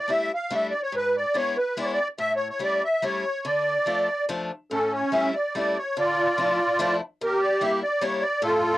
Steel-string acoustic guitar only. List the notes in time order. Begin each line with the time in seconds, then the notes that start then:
0.08 G3 A3 D4 E4
0.51 G3 A3 D4 E4
0.92 G#2
1.34 G#3 B3 D4 E4
1.77 G#3 B3 D4 E4
2.18 A2
2.59 G3 A3 C#4 E4
3.02 G3 A3 C#4 E4
3.45 D3
3.86 F3 A3 D4 F4
4.29 F3 A3 D4 F4
4.71 A2
5.12 G3 A3 C#4 E4
5.55 G3 A3 C#4 E4
5.97 D3
6.38 F3 A3 D4 E4
6.79 F3 A3 D4 E4
7.21 E2
7.61 G3 A#3 D4 E4
8.02 G3 A#3 D4 E4
8.42 A2